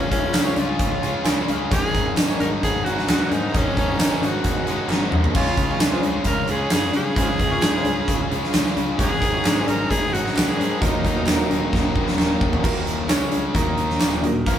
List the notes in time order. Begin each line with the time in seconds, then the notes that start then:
Already playing: C#3 G#3 C#4 F4 G#4 C#5
0.11 C#2 C#4 F4 G#4, kick, closed hi-hat
0.23 C#4 F4 G#4 C#5
0.34 C#2 G#3 C#4 F4 G#4, snare, clap, closed hi-hat, tambourine
0.45 C#4 F4 G#4 C#5
0.56 C#2 C#4 F4 G#4, closed hi-hat
0.79 C#2, kick, closed hi-hat
1.02 C#3 G#3 C#4 F4 G#4, closed hi-hat
1.24 C#2 C#3 G#3 C#4 F4 G#4 G#5, snare, clap, closed hi-hat, tambourine
1.48 C#2 F5, closed hi-hat
1.70 G#1 G#2 D#3 G#3 C#4 D#4 G#4 C#5, kick, closed hi-hat
1.74 C#4
1.93 G#1 G#3 C#4 D#4, kick, closed hi-hat
2.06 C#4 D#4 G#4 D#5
2.17 G#1 D#3 G#3 C#4 D#4, snare, clap, closed hi-hat, tambourine
2.29 C#4 D#4 G#4 C#5
2.40 G#1 C#4 D#4 A#4, closed hi-hat
2.45 G#3
2.63 G#1 G#4, kick, closed hi-hat
2.84 G#1 G#2 D#3 G#3 D#4 F#4, closed hi-hat
2.89 G#3 C#4
2.98 snare
3.07 C#2 G#2 D#3 G#3 C#4 F#4, snare, clap, closed hi-hat, tambourine
3.12 D#4
3.31 G#2 D#4, closed hi-hat
3.53 G#1 G#2 D#3 G#3 C#4 D#4 G#4 D#5, kick, closed hi-hat
3.57 C#4 D#4
3.77 G#1 G#3 C#4 D#4, kick, closed hi-hat
3.89 C#4 D#4 G#4 C#5
3.98 G#1 D#3 G#3 C#4, snare, clap, closed hi-hat, tambourine
4.03 D#4
4.10 C#4 D#4 G#4 C#5
4.20 G#1 C#4 D#4, closed hi-hat
4.25 G#3 F#4
4.44 G#1, kick, closed hi-hat
4.66 D#3 G#3 C#4 D#4, closed hi-hat
4.71 G#2
4.88 G#1 G#2 D#3 G#3 C#4, snare, clap
4.93 D#4
5.11 D#2, mid tom
5.24 floor tom
5.35 C#2 C#3 G#3 C#4 F4 G#4 C#5, kick, crash
5.39 G#4
5.57 C#2 G#4, kick, closed hi-hat
5.63 C#4 F4
5.70 C#4 F4 G#4 C#5
5.79 C#2 G#3 C#4, snare, clap, closed hi-hat, tambourine
5.84 F4 G#4
5.91 C#4 F4 G#4 C5
6.02 C#2 G#4, closed hi-hat
6.07 C#4 F4
6.24 C#2 A#4, kick, closed hi-hat
6.47 C#2 G#3 G#4, closed hi-hat
6.52 C#3 C#4 F4
6.70 F#2 C#3 G#3 C#4 G#4, snare, clap, closed hi-hat, tambourine
6.75 F4 G#4
6.93 C#3 G#4, closed hi-hat
7.16 C#2 C#3 G#3 C#4 F4 G#4 C5, kick, closed hi-hat
7.20 F4 G#4
7.39 C#2 F4 G#4, kick, closed hi-hat
7.45 C#4
7.50 C#4 F4 G#4 C#5
7.62 C#2 G#3, snare, clap, closed hi-hat, tambourine
7.66 C#4 F4 G#4
7.75 C#4 F4 G#4 C5
7.84 C#2 G#4, closed hi-hat
7.89 C#4 F4
8.08 C#2, kick, closed hi-hat
8.29 C#3 G#3 C#4 G#4, closed hi-hat
8.34 C#4 F4
8.44 snare
8.54 C#2 C#3 G#3 C#4 F4 G#4, snare, clap, closed hi-hat, tambourine
8.66 snare
8.77 C#2, closed hi-hat
8.98 G#1 G#2 D#3 G#3 C#4 D#4 G#4 C#5, kick, closed hi-hat
9.21 G#1 G#3 C#4 D#4, kick, closed hi-hat
9.34 C#4 D#4 G#4 C#5
9.44 G#1 D#3 G#3 C#4 D#4, snare, clap, closed hi-hat, tambourine
9.55 C#4 D#4 G#4 C5
9.66 G#1 G#3 C#4 D#4 A#4, closed hi-hat
9.90 G#1 G#4, kick, closed hi-hat
10.13 G#1 G#2 D#3 G#3 C#4 D#4 F#4, closed hi-hat
10.26 snare
10.35 C#2 G#2 D#3 G#3 C#4 D#4 F#4, snare, clap, closed hi-hat, tambourine
10.48 G#4
10.59 G#2, closed hi-hat
10.81 D#1 D#2 A#2 D#3 F#3 A#3 D#4 F#4 A#4, kick, closed hi-hat
11.04 D#1 D#3 F#3 A#3 D#4, kick, closed hi-hat
11.15 A#3 D#4 F#4 A#4
11.26 D#1 D#3 F#3 A#3 D#4, snare, clap, closed hi-hat, tambourine
11.36 A#3 D#4 F#4 A#4
11.51 D#1 D#3 F#3 A#3 D#4, closed hi-hat
11.73 D#1, kick, snare
11.95 D#2 A#2 D#3 F#3 A#3 D#4, kick
12.08 snare
12.16 D#1 D#2 A#2 D#3 F#3 A#3 D#4, snare, clap
12.41 D#1, kick
12.53 floor tom
12.63 D#1 D#2 A#2 D#3 A#3 D#4 F#4 A#4, kick, crash
12.87 closed hi-hat
13.08 C#2 C#3 G#3 C#4 G#4 C#5, snare, clap, closed hi-hat, tambourine
13.31 closed hi-hat
13.54 D#2 D#3 A#3 D#4 F#4 A#4 D#5, kick, closed hi-hat
13.77 closed hi-hat
13.90 snare
14.00 D#1 D#2 A#2 D#3, snare, clap, closed hi-hat, tambourine
14.22 D#1 D#2 A#2 D#4 F#4 A#4 D#5, closed hi-hat
14.46 A#1 A#2 F3 A#3 F4 A#4 F5, kick, closed hi-hat